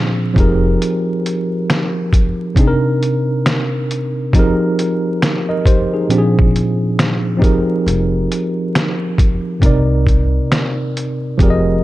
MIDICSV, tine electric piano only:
0, 0, Header, 1, 2, 480
1, 0, Start_track
1, 0, Tempo, 882353
1, 436, Time_signature, 4, 2, 24, 8
1, 6440, End_track
2, 0, Start_track
2, 0, Title_t, "Tine electric piano"
2, 0, Program_c, 0, 4
2, 0, Control_c, 0, 64, 127
2, 0, Note_on_c, 0, 46, 74
2, 0, Note_on_c, 0, 53, 71
2, 0, Note_on_c, 0, 60, 79
2, 0, Note_on_c, 0, 62, 72
2, 0, Note_on_c, 0, 68, 83
2, 178, Note_off_c, 0, 53, 0
2, 184, Note_off_c, 0, 60, 0
2, 185, Note_on_c, 0, 53, 72
2, 191, Note_on_c, 0, 60, 62
2, 196, Note_off_c, 0, 46, 0
2, 199, Note_on_c, 0, 63, 70
2, 203, Note_off_c, 0, 62, 0
2, 203, Control_c, 0, 64, 0
2, 205, Note_off_c, 0, 68, 0
2, 205, Note_on_c, 0, 67, 72
2, 212, Note_on_c, 0, 68, 72
2, 217, Note_on_c, 0, 70, 83
2, 292, Control_c, 0, 64, 127
2, 1369, Note_off_c, 0, 53, 0
2, 1372, Note_off_c, 0, 60, 0
2, 1376, Note_off_c, 0, 63, 0
2, 1379, Note_off_c, 0, 67, 0
2, 1382, Note_off_c, 0, 68, 0
2, 1385, Note_off_c, 0, 70, 0
2, 1386, Note_on_c, 0, 48, 78
2, 1394, Note_on_c, 0, 60, 75
2, 1402, Note_on_c, 0, 62, 66
2, 1403, Control_c, 0, 64, 0
2, 1410, Note_on_c, 0, 63, 65
2, 1418, Note_on_c, 0, 68, 67
2, 1450, Note_off_c, 0, 68, 0
2, 1455, Note_on_c, 0, 70, 86
2, 1513, Control_c, 0, 64, 127
2, 2332, Note_off_c, 0, 48, 0
2, 2336, Note_off_c, 0, 60, 0
2, 2340, Note_off_c, 0, 62, 0
2, 2344, Note_off_c, 0, 63, 0
2, 2356, Note_on_c, 0, 53, 80
2, 2362, Note_on_c, 0, 60, 73
2, 2363, Control_c, 0, 64, 0
2, 2367, Note_off_c, 0, 70, 0
2, 2368, Note_on_c, 0, 63, 90
2, 2375, Note_on_c, 0, 67, 68
2, 2381, Note_on_c, 0, 68, 62
2, 2388, Note_on_c, 0, 70, 85
2, 2461, Control_c, 0, 64, 127
2, 2833, Note_off_c, 0, 63, 0
2, 2836, Note_off_c, 0, 67, 0
2, 2839, Note_off_c, 0, 68, 0
2, 2843, Note_off_c, 0, 70, 0
2, 2986, Note_on_c, 0, 75, 70
2, 2991, Note_on_c, 0, 70, 53
2, 3073, Note_off_c, 0, 75, 0
2, 3075, Note_off_c, 0, 70, 0
2, 3081, Note_on_c, 0, 72, 70
2, 3084, Note_on_c, 0, 67, 58
2, 3219, Note_off_c, 0, 72, 0
2, 3221, Note_off_c, 0, 67, 0
2, 3229, Note_on_c, 0, 68, 63
2, 3232, Note_on_c, 0, 63, 53
2, 3297, Note_off_c, 0, 53, 0
2, 3300, Note_off_c, 0, 60, 0
2, 3312, Note_on_c, 0, 46, 74
2, 3316, Note_on_c, 0, 53, 75
2, 3319, Note_on_c, 0, 60, 71
2, 3324, Control_c, 0, 64, 0
2, 3325, Note_on_c, 0, 62, 68
2, 3328, Note_on_c, 0, 67, 62
2, 3356, Note_off_c, 0, 68, 0
2, 3363, Note_on_c, 0, 68, 83
2, 3366, Note_off_c, 0, 67, 0
2, 3407, Control_c, 0, 64, 127
2, 3456, Note_off_c, 0, 63, 0
2, 4003, Note_off_c, 0, 53, 0
2, 4009, Note_on_c, 0, 53, 64
2, 4011, Note_off_c, 0, 60, 0
2, 4017, Note_on_c, 0, 60, 69
2, 4024, Note_on_c, 0, 63, 73
2, 4029, Note_off_c, 0, 68, 0
2, 4030, Note_on_c, 0, 67, 67
2, 4034, Note_off_c, 0, 46, 0
2, 4036, Note_on_c, 0, 68, 68
2, 4041, Note_off_c, 0, 62, 0
2, 4043, Control_c, 0, 64, 0
2, 4043, Note_on_c, 0, 70, 76
2, 4136, Control_c, 0, 64, 127
2, 5201, Note_off_c, 0, 53, 0
2, 5205, Note_off_c, 0, 60, 0
2, 5208, Note_off_c, 0, 63, 0
2, 5211, Note_off_c, 0, 67, 0
2, 5214, Note_off_c, 0, 68, 0
2, 5218, Note_off_c, 0, 70, 0
2, 5221, Note_on_c, 0, 48, 77
2, 5230, Note_on_c, 0, 60, 71
2, 5237, Note_on_c, 0, 63, 72
2, 5245, Control_c, 0, 64, 0
2, 5247, Note_on_c, 0, 70, 65
2, 5255, Note_on_c, 0, 74, 87
2, 5345, Control_c, 0, 64, 127
2, 6170, Note_off_c, 0, 48, 0
2, 6174, Note_off_c, 0, 60, 0
2, 6178, Note_off_c, 0, 63, 0
2, 6183, Note_off_c, 0, 70, 0
2, 6187, Note_off_c, 0, 74, 0
2, 6189, Note_on_c, 0, 53, 82
2, 6196, Note_on_c, 0, 60, 78
2, 6202, Control_c, 0, 64, 0
2, 6202, Note_on_c, 0, 67, 74
2, 6209, Note_on_c, 0, 68, 78
2, 6216, Note_on_c, 0, 70, 73
2, 6222, Note_on_c, 0, 74, 62
2, 6253, Note_off_c, 0, 74, 0
2, 6257, Note_on_c, 0, 75, 96
2, 6303, Control_c, 0, 64, 127
2, 6440, Note_off_c, 0, 53, 0
2, 6440, Note_off_c, 0, 60, 0
2, 6440, Note_off_c, 0, 67, 0
2, 6440, Note_off_c, 0, 68, 0
2, 6440, Note_off_c, 0, 70, 0
2, 6440, Note_off_c, 0, 75, 0
2, 6440, End_track
0, 0, End_of_file